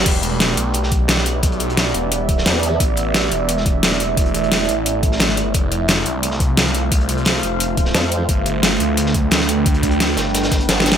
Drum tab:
CC |x-----------------------------------------------|------------------------------------------------|------------------------------------------------|------------------------------------------------|
HH |x-----x-----x-----x-----x-----x-----x-----x-----|x--x--x--x--x-----x-----x-----x-----x--x--x-----|x-----x-----x-----x-----x-----x-----x-----x-----|x--x--x--x--x-----x-----x-----x-----x--x--x-----|
SD |------------o--------------o--------o--o--------|------------o--------------------o--o-----------|------------o--------------o--------o--o--------|------------o--------------------o--o--o--------|
BD |o-----------------------------o-----------------|o-----------------------------o-----------------|o-----------------------------o-----------------|o-----------------------------o-----------------|

CC |------------------------------------------------|------------------------------------------------|------------------------------------------------|------------------------------------------------|
HH |x-----x-----x-----x-----x-----x-----x-----x-----|x--x--x--x--x-----x-----x-----x-----x--x--x-----|x-----x-----x-----x-----x-----x-----x-----x-----|x--x--x--x--x-----x-----x--x--x--x--x--x--x-----|
SD |------------o--------------o--------o--o--------|------------o--------------------o--o-----------|------------o--------------o--------o--o--------|------------o-----o-----o--o--o-----o---o-o-o---|
BD |o-----------------------------o-----------------|o-----------------------------o-----------------|o-----------------------------o-----------------|o-----o-----------------------o-----------------|